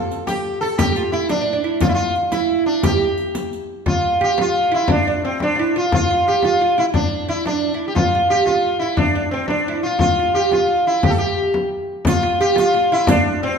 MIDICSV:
0, 0, Header, 1, 5, 480
1, 0, Start_track
1, 0, Tempo, 341608
1, 1102, Time_signature, 6, 3, 24, 8
1, 19084, End_track
2, 0, Start_track
2, 0, Title_t, "Oud"
2, 0, Program_c, 0, 24
2, 0, Note_on_c, 0, 69, 88
2, 376, Note_off_c, 0, 69, 0
2, 382, Note_on_c, 0, 67, 71
2, 874, Note_off_c, 0, 67, 0
2, 880, Note_on_c, 0, 69, 74
2, 1095, Note_off_c, 0, 69, 0
2, 1101, Note_on_c, 0, 67, 74
2, 1277, Note_off_c, 0, 67, 0
2, 1294, Note_on_c, 0, 67, 53
2, 1346, Note_off_c, 0, 67, 0
2, 1351, Note_on_c, 0, 65, 67
2, 1588, Note_off_c, 0, 65, 0
2, 1594, Note_on_c, 0, 64, 78
2, 1817, Note_off_c, 0, 64, 0
2, 1822, Note_on_c, 0, 62, 76
2, 1970, Note_off_c, 0, 62, 0
2, 1987, Note_on_c, 0, 62, 68
2, 2132, Note_off_c, 0, 62, 0
2, 2149, Note_on_c, 0, 62, 69
2, 2300, Note_off_c, 0, 62, 0
2, 2306, Note_on_c, 0, 64, 68
2, 2551, Note_off_c, 0, 64, 0
2, 2557, Note_on_c, 0, 65, 78
2, 2642, Note_off_c, 0, 65, 0
2, 2761, Note_on_c, 0, 65, 68
2, 3014, Note_off_c, 0, 65, 0
2, 3265, Note_on_c, 0, 64, 70
2, 3983, Note_off_c, 0, 64, 0
2, 3988, Note_on_c, 0, 67, 68
2, 4889, Note_off_c, 0, 67, 0
2, 5423, Note_on_c, 0, 65, 79
2, 5908, Note_off_c, 0, 65, 0
2, 5914, Note_on_c, 0, 67, 87
2, 6146, Note_off_c, 0, 67, 0
2, 6152, Note_on_c, 0, 65, 79
2, 6620, Note_off_c, 0, 65, 0
2, 6626, Note_on_c, 0, 64, 80
2, 6871, Note_off_c, 0, 64, 0
2, 6877, Note_on_c, 0, 62, 80
2, 7113, Note_off_c, 0, 62, 0
2, 7130, Note_on_c, 0, 62, 70
2, 7363, Note_off_c, 0, 62, 0
2, 7377, Note_on_c, 0, 60, 66
2, 7606, Note_off_c, 0, 60, 0
2, 7622, Note_on_c, 0, 62, 65
2, 7787, Note_off_c, 0, 62, 0
2, 7803, Note_on_c, 0, 65, 55
2, 7842, Note_off_c, 0, 65, 0
2, 7857, Note_on_c, 0, 64, 71
2, 8086, Note_off_c, 0, 64, 0
2, 8093, Note_on_c, 0, 65, 77
2, 8324, Note_off_c, 0, 65, 0
2, 8341, Note_on_c, 0, 65, 75
2, 8563, Note_off_c, 0, 65, 0
2, 8580, Note_on_c, 0, 65, 73
2, 8807, Note_off_c, 0, 65, 0
2, 8832, Note_on_c, 0, 67, 74
2, 9032, Note_off_c, 0, 67, 0
2, 9053, Note_on_c, 0, 65, 75
2, 9276, Note_off_c, 0, 65, 0
2, 9293, Note_on_c, 0, 65, 70
2, 9519, Note_off_c, 0, 65, 0
2, 9524, Note_on_c, 0, 64, 74
2, 9753, Note_off_c, 0, 64, 0
2, 9759, Note_on_c, 0, 62, 69
2, 10230, Note_off_c, 0, 62, 0
2, 10236, Note_on_c, 0, 64, 70
2, 10476, Note_off_c, 0, 64, 0
2, 10493, Note_on_c, 0, 62, 69
2, 10870, Note_off_c, 0, 62, 0
2, 10877, Note_on_c, 0, 64, 61
2, 11084, Note_off_c, 0, 64, 0
2, 11216, Note_on_c, 0, 65, 73
2, 11432, Note_off_c, 0, 65, 0
2, 11449, Note_on_c, 0, 65, 70
2, 11674, Note_off_c, 0, 65, 0
2, 11680, Note_on_c, 0, 67, 74
2, 11903, Note_off_c, 0, 67, 0
2, 11909, Note_on_c, 0, 65, 75
2, 12385, Note_off_c, 0, 65, 0
2, 12391, Note_on_c, 0, 64, 72
2, 12610, Note_off_c, 0, 64, 0
2, 12625, Note_on_c, 0, 62, 74
2, 12845, Note_off_c, 0, 62, 0
2, 12862, Note_on_c, 0, 62, 63
2, 13084, Note_off_c, 0, 62, 0
2, 13119, Note_on_c, 0, 60, 68
2, 13347, Note_off_c, 0, 60, 0
2, 13353, Note_on_c, 0, 62, 68
2, 13594, Note_off_c, 0, 62, 0
2, 13604, Note_on_c, 0, 64, 73
2, 13839, Note_off_c, 0, 64, 0
2, 13857, Note_on_c, 0, 65, 69
2, 14080, Note_off_c, 0, 65, 0
2, 14097, Note_on_c, 0, 65, 81
2, 14303, Note_off_c, 0, 65, 0
2, 14320, Note_on_c, 0, 65, 67
2, 14552, Note_off_c, 0, 65, 0
2, 14558, Note_on_c, 0, 67, 77
2, 14782, Note_off_c, 0, 67, 0
2, 14788, Note_on_c, 0, 65, 64
2, 15507, Note_off_c, 0, 65, 0
2, 15513, Note_on_c, 0, 67, 75
2, 15598, Note_off_c, 0, 67, 0
2, 15726, Note_on_c, 0, 67, 69
2, 16422, Note_off_c, 0, 67, 0
2, 16962, Note_on_c, 0, 65, 86
2, 17168, Note_off_c, 0, 65, 0
2, 17185, Note_on_c, 0, 65, 82
2, 17425, Note_off_c, 0, 65, 0
2, 17431, Note_on_c, 0, 67, 79
2, 17637, Note_off_c, 0, 67, 0
2, 17642, Note_on_c, 0, 65, 78
2, 17886, Note_off_c, 0, 65, 0
2, 17903, Note_on_c, 0, 65, 75
2, 18149, Note_off_c, 0, 65, 0
2, 18156, Note_on_c, 0, 64, 84
2, 18395, Note_off_c, 0, 64, 0
2, 18411, Note_on_c, 0, 62, 82
2, 18843, Note_off_c, 0, 62, 0
2, 18875, Note_on_c, 0, 60, 79
2, 19084, Note_off_c, 0, 60, 0
2, 19084, End_track
3, 0, Start_track
3, 0, Title_t, "Sitar"
3, 0, Program_c, 1, 104
3, 0, Note_on_c, 1, 69, 94
3, 329, Note_off_c, 1, 69, 0
3, 380, Note_on_c, 1, 67, 91
3, 827, Note_off_c, 1, 67, 0
3, 855, Note_on_c, 1, 69, 83
3, 1097, Note_on_c, 1, 67, 80
3, 1106, Note_off_c, 1, 69, 0
3, 1571, Note_off_c, 1, 67, 0
3, 1577, Note_on_c, 1, 64, 80
3, 1802, Note_off_c, 1, 64, 0
3, 1823, Note_on_c, 1, 62, 78
3, 2542, Note_off_c, 1, 62, 0
3, 2548, Note_on_c, 1, 65, 78
3, 2637, Note_off_c, 1, 65, 0
3, 2657, Note_on_c, 1, 64, 68
3, 2729, Note_off_c, 1, 64, 0
3, 2735, Note_on_c, 1, 65, 96
3, 3000, Note_off_c, 1, 65, 0
3, 3254, Note_on_c, 1, 64, 82
3, 3735, Note_off_c, 1, 64, 0
3, 3741, Note_on_c, 1, 62, 81
3, 3989, Note_off_c, 1, 62, 0
3, 3995, Note_on_c, 1, 67, 78
3, 4892, Note_off_c, 1, 67, 0
3, 5450, Note_on_c, 1, 65, 88
3, 5883, Note_off_c, 1, 65, 0
3, 5956, Note_on_c, 1, 67, 93
3, 6154, Note_off_c, 1, 67, 0
3, 6200, Note_on_c, 1, 65, 99
3, 6660, Note_off_c, 1, 65, 0
3, 6666, Note_on_c, 1, 64, 90
3, 6869, Note_off_c, 1, 64, 0
3, 6908, Note_on_c, 1, 62, 82
3, 7333, Note_off_c, 1, 62, 0
3, 7370, Note_on_c, 1, 60, 71
3, 7580, Note_off_c, 1, 60, 0
3, 7632, Note_on_c, 1, 62, 87
3, 8100, Note_off_c, 1, 62, 0
3, 8116, Note_on_c, 1, 65, 85
3, 8314, Note_off_c, 1, 65, 0
3, 8354, Note_on_c, 1, 65, 94
3, 8776, Note_off_c, 1, 65, 0
3, 8820, Note_on_c, 1, 67, 90
3, 9048, Note_off_c, 1, 67, 0
3, 9068, Note_on_c, 1, 65, 94
3, 9493, Note_off_c, 1, 65, 0
3, 9540, Note_on_c, 1, 64, 86
3, 9610, Note_off_c, 1, 64, 0
3, 9765, Note_on_c, 1, 62, 82
3, 10200, Note_off_c, 1, 62, 0
3, 10248, Note_on_c, 1, 64, 86
3, 10459, Note_off_c, 1, 64, 0
3, 10493, Note_on_c, 1, 62, 85
3, 11057, Note_off_c, 1, 62, 0
3, 11069, Note_on_c, 1, 67, 65
3, 11165, Note_off_c, 1, 67, 0
3, 11171, Note_on_c, 1, 65, 84
3, 11622, Note_off_c, 1, 65, 0
3, 11663, Note_on_c, 1, 67, 89
3, 11873, Note_off_c, 1, 67, 0
3, 11879, Note_on_c, 1, 65, 85
3, 12351, Note_off_c, 1, 65, 0
3, 12357, Note_on_c, 1, 64, 73
3, 12601, Note_on_c, 1, 62, 76
3, 12616, Note_off_c, 1, 64, 0
3, 13080, Note_off_c, 1, 62, 0
3, 13086, Note_on_c, 1, 60, 72
3, 13313, Note_off_c, 1, 60, 0
3, 13318, Note_on_c, 1, 62, 84
3, 13775, Note_off_c, 1, 62, 0
3, 13814, Note_on_c, 1, 65, 83
3, 14032, Note_off_c, 1, 65, 0
3, 14049, Note_on_c, 1, 65, 90
3, 14501, Note_off_c, 1, 65, 0
3, 14536, Note_on_c, 1, 67, 83
3, 14761, Note_off_c, 1, 67, 0
3, 14798, Note_on_c, 1, 65, 85
3, 15268, Note_off_c, 1, 65, 0
3, 15274, Note_on_c, 1, 64, 78
3, 15514, Note_off_c, 1, 64, 0
3, 15532, Note_on_c, 1, 67, 69
3, 15601, Note_on_c, 1, 69, 64
3, 15609, Note_off_c, 1, 67, 0
3, 15698, Note_off_c, 1, 69, 0
3, 15711, Note_on_c, 1, 67, 82
3, 16414, Note_off_c, 1, 67, 0
3, 16982, Note_on_c, 1, 65, 90
3, 17409, Note_off_c, 1, 65, 0
3, 17434, Note_on_c, 1, 67, 99
3, 17674, Note_off_c, 1, 67, 0
3, 17695, Note_on_c, 1, 65, 104
3, 18125, Note_off_c, 1, 65, 0
3, 18168, Note_on_c, 1, 64, 101
3, 18378, Note_off_c, 1, 64, 0
3, 18390, Note_on_c, 1, 62, 92
3, 18831, Note_off_c, 1, 62, 0
3, 18870, Note_on_c, 1, 60, 78
3, 19084, Note_off_c, 1, 60, 0
3, 19084, End_track
4, 0, Start_track
4, 0, Title_t, "Frame drum"
4, 383, Note_on_c, 9, 64, 71
4, 524, Note_off_c, 9, 64, 0
4, 632, Note_on_c, 9, 64, 27
4, 772, Note_off_c, 9, 64, 0
4, 1105, Note_on_c, 9, 64, 91
4, 1245, Note_off_c, 9, 64, 0
4, 1324, Note_on_c, 9, 64, 27
4, 1464, Note_off_c, 9, 64, 0
4, 1820, Note_on_c, 9, 64, 66
4, 1961, Note_off_c, 9, 64, 0
4, 2545, Note_on_c, 9, 64, 86
4, 2685, Note_off_c, 9, 64, 0
4, 2777, Note_on_c, 9, 64, 27
4, 2917, Note_off_c, 9, 64, 0
4, 3256, Note_on_c, 9, 64, 67
4, 3397, Note_off_c, 9, 64, 0
4, 3495, Note_on_c, 9, 64, 26
4, 3636, Note_off_c, 9, 64, 0
4, 3980, Note_on_c, 9, 64, 87
4, 4121, Note_off_c, 9, 64, 0
4, 4705, Note_on_c, 9, 64, 64
4, 4846, Note_off_c, 9, 64, 0
4, 5426, Note_on_c, 9, 64, 79
4, 5566, Note_off_c, 9, 64, 0
4, 5684, Note_on_c, 9, 64, 27
4, 5824, Note_off_c, 9, 64, 0
4, 5921, Note_on_c, 9, 64, 27
4, 6061, Note_off_c, 9, 64, 0
4, 6153, Note_on_c, 9, 64, 71
4, 6294, Note_off_c, 9, 64, 0
4, 6855, Note_on_c, 9, 64, 89
4, 6996, Note_off_c, 9, 64, 0
4, 7095, Note_on_c, 9, 64, 30
4, 7235, Note_off_c, 9, 64, 0
4, 7351, Note_on_c, 9, 64, 26
4, 7492, Note_off_c, 9, 64, 0
4, 7591, Note_on_c, 9, 64, 69
4, 7732, Note_off_c, 9, 64, 0
4, 8322, Note_on_c, 9, 64, 95
4, 8463, Note_off_c, 9, 64, 0
4, 8564, Note_on_c, 9, 64, 30
4, 8705, Note_off_c, 9, 64, 0
4, 8795, Note_on_c, 9, 64, 26
4, 8936, Note_off_c, 9, 64, 0
4, 9029, Note_on_c, 9, 64, 72
4, 9169, Note_off_c, 9, 64, 0
4, 9749, Note_on_c, 9, 64, 89
4, 9889, Note_off_c, 9, 64, 0
4, 10003, Note_on_c, 9, 64, 31
4, 10143, Note_off_c, 9, 64, 0
4, 10243, Note_on_c, 9, 64, 27
4, 10384, Note_off_c, 9, 64, 0
4, 10477, Note_on_c, 9, 64, 66
4, 10617, Note_off_c, 9, 64, 0
4, 10707, Note_on_c, 9, 64, 25
4, 10847, Note_off_c, 9, 64, 0
4, 11189, Note_on_c, 9, 64, 80
4, 11329, Note_off_c, 9, 64, 0
4, 11425, Note_on_c, 9, 64, 24
4, 11566, Note_off_c, 9, 64, 0
4, 11662, Note_on_c, 9, 64, 24
4, 11802, Note_off_c, 9, 64, 0
4, 11900, Note_on_c, 9, 64, 60
4, 12041, Note_off_c, 9, 64, 0
4, 12605, Note_on_c, 9, 64, 85
4, 12746, Note_off_c, 9, 64, 0
4, 12849, Note_on_c, 9, 64, 25
4, 12989, Note_off_c, 9, 64, 0
4, 13097, Note_on_c, 9, 64, 25
4, 13237, Note_off_c, 9, 64, 0
4, 13318, Note_on_c, 9, 64, 63
4, 13459, Note_off_c, 9, 64, 0
4, 14038, Note_on_c, 9, 64, 87
4, 14178, Note_off_c, 9, 64, 0
4, 14285, Note_on_c, 9, 64, 27
4, 14426, Note_off_c, 9, 64, 0
4, 14531, Note_on_c, 9, 64, 25
4, 14671, Note_off_c, 9, 64, 0
4, 14776, Note_on_c, 9, 64, 61
4, 14917, Note_off_c, 9, 64, 0
4, 15502, Note_on_c, 9, 64, 95
4, 15642, Note_off_c, 9, 64, 0
4, 16217, Note_on_c, 9, 64, 65
4, 16357, Note_off_c, 9, 64, 0
4, 16929, Note_on_c, 9, 64, 91
4, 17070, Note_off_c, 9, 64, 0
4, 17189, Note_on_c, 9, 64, 30
4, 17330, Note_off_c, 9, 64, 0
4, 17422, Note_on_c, 9, 64, 30
4, 17562, Note_off_c, 9, 64, 0
4, 17645, Note_on_c, 9, 64, 72
4, 17786, Note_off_c, 9, 64, 0
4, 18368, Note_on_c, 9, 64, 106
4, 18508, Note_off_c, 9, 64, 0
4, 18621, Note_on_c, 9, 64, 31
4, 18762, Note_off_c, 9, 64, 0
4, 18860, Note_on_c, 9, 64, 27
4, 19000, Note_off_c, 9, 64, 0
4, 19084, End_track
5, 0, Start_track
5, 0, Title_t, "Riq"
5, 159, Note_on_c, 9, 54, 20
5, 300, Note_off_c, 9, 54, 0
5, 399, Note_on_c, 9, 54, 41
5, 539, Note_off_c, 9, 54, 0
5, 1108, Note_on_c, 9, 54, 68
5, 1249, Note_off_c, 9, 54, 0
5, 1346, Note_on_c, 9, 54, 20
5, 1487, Note_off_c, 9, 54, 0
5, 1589, Note_on_c, 9, 54, 19
5, 1730, Note_off_c, 9, 54, 0
5, 1818, Note_on_c, 9, 54, 42
5, 1958, Note_off_c, 9, 54, 0
5, 2535, Note_on_c, 9, 54, 54
5, 2675, Note_off_c, 9, 54, 0
5, 2794, Note_on_c, 9, 54, 17
5, 2935, Note_off_c, 9, 54, 0
5, 3029, Note_on_c, 9, 54, 16
5, 3170, Note_off_c, 9, 54, 0
5, 3259, Note_on_c, 9, 54, 42
5, 3399, Note_off_c, 9, 54, 0
5, 3983, Note_on_c, 9, 54, 65
5, 4124, Note_off_c, 9, 54, 0
5, 4462, Note_on_c, 9, 54, 19
5, 4603, Note_off_c, 9, 54, 0
5, 4707, Note_on_c, 9, 54, 45
5, 4847, Note_off_c, 9, 54, 0
5, 4960, Note_on_c, 9, 54, 22
5, 5100, Note_off_c, 9, 54, 0
5, 16958, Note_on_c, 9, 54, 65
5, 17098, Note_off_c, 9, 54, 0
5, 17436, Note_on_c, 9, 54, 19
5, 17576, Note_off_c, 9, 54, 0
5, 17675, Note_on_c, 9, 54, 40
5, 17815, Note_off_c, 9, 54, 0
5, 18385, Note_on_c, 9, 54, 66
5, 18525, Note_off_c, 9, 54, 0
5, 19084, End_track
0, 0, End_of_file